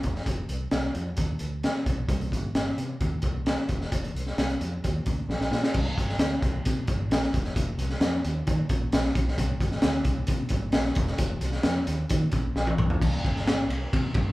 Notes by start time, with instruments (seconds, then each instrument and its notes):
0.03 fingered electric bass E1, kick, closed hi-hat
0.16 snare
0.26 fingered electric bass F1, kick, closed hi-hat
0.49 fingered electric bass C2, closed hi-hat
0.71 fingered electric bass C2, snare, closed hi-hat
0.95 fingered electric bass F2, closed hi-hat
1.17 fingered electric bass D#2, kick, closed hi-hat
1.39 fingered electric bass D2, closed hi-hat
1.63 snare, closed hi-hat
1.86 fingered electric bass C2, kick, closed hi-hat
1.97 fingered electric bass B1
2.08 fingered electric bass C2, kick, closed hi-hat
2.21 closed hi-hat
2.32 fingered electric bass G1, kick, closed hi-hat
2.55 fingered electric bass G1, snare, closed hi-hat
2.77 fingered electric bass C3, closed hi-hat
3.00 fingered electric bass D#2, kick, closed hi-hat
3.22 fingered electric bass C2, kick, closed hi-hat
3.46 snare, closed hi-hat
3.69 fingered electric bass E1, kick, closed hi-hat
3.81 snare
3.92 fingered electric bass F1, kick, closed hi-hat
4.04 closed hi-hat
4.14 fingered electric bass C2, closed hi-hat
4.27 snare
4.38 fingered electric bass C2, snare, closed hi-hat
4.50 closed hi-hat
4.61 fingered electric bass F2, closed hi-hat
4.84 fingered electric bass D#2, kick, closed hi-hat
5.06 fingered electric bass D2, kick, closed hi-hat
5.29 fingered electric bass A#1, snare
5.40 fingered electric bass A#1, snare
5.51 fingered electric bass A#2, snare
5.63 snare
5.74 fingered electric bass C2, kick, crash
5.97 fingered electric bass G1, kick, closed hi-hat
6.09 snare
6.18 fingered electric bass D2, snare, closed hi-hat
6.42 fingered electric bass C2, kick, closed hi-hat
6.65 fingered electric bass C3, kick, closed hi-hat
6.87 fingered electric bass G1, kick, closed hi-hat
7.09 fingered electric bass A#1, snare, closed hi-hat
7.22 snare
7.33 fingered electric bass E1, kick, closed hi-hat
7.45 snare
7.55 fingered electric bass F1, kick, closed hi-hat
7.77 fingered electric bass C2, closed hi-hat
7.90 snare
8.00 fingered electric bass F2, snare, closed hi-hat
8.25 fingered electric bass D#2, closed hi-hat
8.47 fingered electric bass D#3, kick, closed hi-hat
8.69 fingered electric bass A#1, kick, closed hi-hat
8.92 fingered electric bass A#1, snare, closed hi-hat
9.04 snare
9.15 fingered electric bass B1, kick, closed hi-hat
9.28 snare
9.38 fingered electric bass C2, kick, closed hi-hat
9.60 fingered electric bass G1, kick, closed hi-hat
9.71 snare
9.82 fingered electric bass D2, snare, closed hi-hat
10.05 fingered electric bass C2, kick, closed hi-hat
10.27 fingered electric bass C3, kick, closed hi-hat
10.49 fingered electric bass G1, kick, closed hi-hat
10.72 fingered electric bass A#1, snare, closed hi-hat
10.84 snare
10.95 fingered electric bass E1, kick, closed hi-hat
11.07 snare
11.18 fingered electric bass F1, kick, closed hi-hat
11.41 fingered electric bass C2, closed hi-hat
11.52 snare
11.63 fingered electric bass F2, snare, closed hi-hat
11.87 fingered electric bass D#2, closed hi-hat
12.09 fingered electric bass D#3, kick, closed hi-hat
12.32 fingered electric bass A#1, kick, closed hi-hat
12.56 fingered electric bass A#1, snare
12.67 high tom
12.78 fingered electric bass B1, mid tom
12.90 floor tom
13.01 fingered electric bass C2, kick, crash
13.14 ride
13.24 fingered electric bass G1, kick, ride
13.36 snare
13.47 snare, ride
13.69 fingered electric bass C2, ride
13.93 fingered electric bass C3, kick, ride
14.14 fingered electric bass G1, kick, ride